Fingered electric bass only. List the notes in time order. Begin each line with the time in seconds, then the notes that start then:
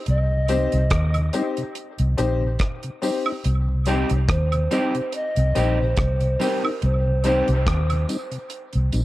0.08 C2
0.73 C2
0.91 D#2
2.00 C2
2.19 A#1
3.45 C2
4.11 C2
4.29 D#2
5.37 C2
5.56 A#1
5.98 C2
6.83 C2
7.49 C2
7.67 D#2
8.75 C2
8.94 A#1